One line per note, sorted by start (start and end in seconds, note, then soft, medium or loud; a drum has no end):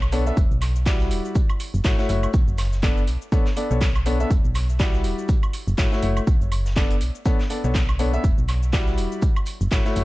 0.00 0.32 B1 medium
0.00 high woodblock medium
0.00 shaker soft
0.12 0.24 B3 medium
0.12 0.24 D4 medium
0.12 0.24 A4 medium
0.12 0.24 C#5 loud
0.12 open hi-hat loud
0.12 shaker medium
0.26 0.35 B3 medium
0.26 0.35 D4 medium
0.26 0.35 A4 medium
0.26 0.35 E5 medium
0.26 shaker medium
0.37 0.47 E1 loud
0.37 kick loud
0.37 shaker medium
0.51 1.12 B1 medium
0.51 shaker soft
0.62 clap soft
0.62 open hi-hat loud
0.62 high woodblock medium
0.62 shaker medium
0.76 shaker medium
0.86 1.34 G3 medium
0.86 1.34 E4 medium
0.86 1.34 F#4 medium
0.86 1.34 D5 loud
0.86 kick loud
0.86 snare loud
0.86 clap loud
0.86 shaker medium
1.00 snare soft
1.00 shaker soft
1.11 1.20 E1 medium
1.11 open hi-hat loud
1.11 shaker medium
1.25 shaker medium
1.35 kick loud
1.35 shaker medium
1.50 high woodblock medium
1.50 shaker soft
1.60 open hi-hat loud
1.60 shaker medium
1.74 1.81 F#1 loud
1.74 shaker medium
1.84 1.94 A1 medium
1.84 1.95 A3 medium
1.84 1.95 E4 medium
1.84 1.95 F#4 medium
1.84 1.95 C#5 loud
1.84 kick loud
1.84 snare loud
1.84 clap loud
1.84 shaker medium
1.99 2.07 A3 medium
1.99 2.07 E4 medium
1.99 2.07 F#4 medium
1.99 2.07 C#5 loud
1.99 snare medium
1.99 shaker soft
2.09 2.27 F#1 loud
2.09 2.27 A3 medium
2.09 2.27 E4 medium
2.09 2.27 F#4 medium
2.09 2.27 C#5 medium
2.09 open hi-hat loud
2.09 shaker medium
2.23 high woodblock medium
2.23 shaker medium
2.34 2.43 B1 loud
2.34 kick loud
2.34 shaker medium
2.48 3.09 F#1 medium
2.48 shaker soft
2.58 snare loud
2.58 open hi-hat loud
2.58 high woodblock medium
2.58 shaker medium
2.73 snare soft
2.73 shaker medium
2.83 3.00 B3 medium
2.83 3.00 D4 medium
2.83 3.00 A4 medium
2.83 3.00 D5 loud
2.83 kick loud
2.83 clap loud
2.83 shaker medium
2.97 shaker soft
3.08 3.17 B1 medium
3.08 open hi-hat medium
3.08 shaker medium
3.22 shaker medium
3.32 3.44 B3 loud
3.32 3.44 D4 medium
3.32 3.44 A4 medium
3.32 3.44 C#5 loud
3.32 kick loud
3.32 shaker medium
3.46 snare medium
3.46 clap soft
3.46 shaker soft
3.57 3.67 B3 medium
3.57 3.67 D4 medium
3.57 3.67 A4 medium
3.57 3.67 D5 medium
3.57 open hi-hat loud
3.57 shaker medium
3.71 4.25 B1 medium
3.71 3.86 B3 medium
3.71 3.86 D4 medium
3.71 3.86 A4 medium
3.71 3.86 C#5 medium
3.71 shaker medium
3.81 kick loud
3.81 snare loud
3.81 clap loud
3.81 shaker medium
3.95 high woodblock medium
3.95 shaker soft
4.06 4.18 B3 medium
4.06 4.18 D4 medium
4.06 4.18 A4 medium
4.06 4.17 C#5 loud
4.06 open hi-hat loud
4.06 shaker medium
4.20 4.29 B3 medium
4.20 4.29 D4 medium
4.20 4.29 A4 medium
4.20 4.29 E5 medium
4.20 shaker medium
4.31 4.40 E1 loud
4.31 kick loud
4.31 shaker medium
4.31 shaker loud
4.45 5.06 B1 medium
4.45 shaker soft
4.55 clap soft
4.55 open hi-hat loud
4.55 high woodblock medium
4.55 shaker medium
4.69 shaker medium
4.80 5.28 G3 medium
4.80 5.28 E4 medium
4.80 5.28 F#4 medium
4.80 5.28 D5 loud
4.80 kick loud
4.80 snare loud
4.80 clap loud
4.80 shaker medium
4.93 snare soft
4.93 shaker soft
5.04 5.14 E1 medium
5.04 open hi-hat medium
5.04 shaker medium
5.18 shaker medium
5.29 kick loud
5.29 shaker medium
5.43 high woodblock medium
5.43 shaker soft
5.53 open hi-hat loud
5.53 shaker medium
5.68 5.75 F#1 loud
5.68 shaker medium
5.78 5.88 A1 medium
5.78 5.89 A3 medium
5.78 5.89 E4 medium
5.78 5.89 F#4 medium
5.78 5.89 C#5 loud
5.78 kick loud
5.78 snare loud
5.78 clap loud
5.78 shaker medium
5.92 6.00 A3 loud
5.92 6.00 E4 medium
5.92 6.00 F#4 medium
5.92 6.00 C#5 loud
5.92 snare medium
5.92 shaker soft
6.02 6.20 F#1 loud
6.02 6.20 A3 medium
6.02 6.20 E4 medium
6.02 6.20 F#4 medium
6.02 6.20 C#5 medium
6.02 open hi-hat medium
6.02 shaker medium
6.17 high woodblock medium
6.17 shaker medium
6.27 6.37 B1 loud
6.27 kick loud
6.27 shaker medium
6.41 7.02 F#1 medium
6.41 shaker soft
6.52 open hi-hat loud
6.52 high woodblock medium
6.52 shaker medium
6.66 snare medium
6.66 shaker medium
6.76 6.94 B3 medium
6.76 6.94 D4 medium
6.76 6.94 A4 medium
6.76 6.94 D5 loud
6.76 kick loud
6.76 snare loud
6.76 clap loud
6.76 shaker medium
6.90 closed hi-hat soft
6.90 shaker soft
7.01 7.11 B1 medium
7.01 open hi-hat medium
7.01 shaker medium
7.15 shaker medium
7.25 7.37 B3 loud
7.25 7.37 D4 medium
7.25 7.37 A4 medium
7.25 7.37 C#5 loud
7.25 kick loud
7.25 shaker medium
7.40 snare medium
7.40 clap soft
7.40 shaker soft
7.50 7.61 B3 medium
7.50 7.61 D4 medium
7.50 7.61 A4 medium
7.50 7.61 D5 medium
7.50 open hi-hat loud
7.50 shaker medium
7.64 8.19 B1 medium
7.64 7.79 B3 medium
7.64 7.79 D4 medium
7.64 7.79 A4 medium
7.64 7.79 C#5 medium
7.64 shaker medium
7.74 kick loud
7.74 snare loud
7.74 clap loud
7.74 shaker medium
7.89 high woodblock medium
7.89 shaker soft
7.99 8.11 B3 medium
7.99 8.11 D4 medium
7.99 8.11 A4 medium
7.99 8.11 C#5 loud
7.99 open hi-hat medium
7.99 shaker medium
8.13 8.22 B3 medium
8.13 8.22 D4 medium
8.13 8.22 A4 medium
8.13 8.22 E5 medium
8.13 shaker medium
8.24 8.34 E1 loud
8.24 kick loud
8.24 shaker medium
8.38 8.99 B1 medium
8.38 shaker soft
8.48 clap soft
8.48 open hi-hat loud
8.48 high woodblock medium
8.48 shaker medium
8.63 shaker medium
8.73 9.21 G3 medium
8.73 9.21 E4 medium
8.73 9.21 F#4 medium
8.73 9.21 D5 loud
8.73 kick loud
8.73 snare loud
8.73 clap loud
8.73 shaker medium
8.87 snare soft
8.87 shaker soft
8.98 9.07 E1 medium
8.98 open hi-hat medium
8.98 shaker medium
9.12 shaker medium
9.22 kick loud
9.22 shaker medium
9.36 high woodblock medium
9.36 shaker soft
9.46 open hi-hat loud
9.46 shaker medium
9.61 9.68 F#1 loud
9.61 shaker medium
9.71 9.81 A1 medium
9.71 9.82 A3 medium
9.71 9.82 E4 medium
9.71 9.82 F#4 medium
9.71 9.82 C#5 loud
9.71 kick loud
9.71 snare loud
9.71 clap loud
9.71 shaker medium
9.85 9.94 A3 loud
9.85 9.94 E4 medium
9.85 9.94 F#4 medium
9.85 9.94 C#5 loud
9.85 snare medium
9.85 shaker soft
9.96 10.04 F#1 loud
9.96 10.04 A3 medium
9.96 10.04 E4 medium
9.96 10.04 F#4 medium
9.96 10.04 C#5 medium
9.96 open hi-hat medium
9.96 shaker medium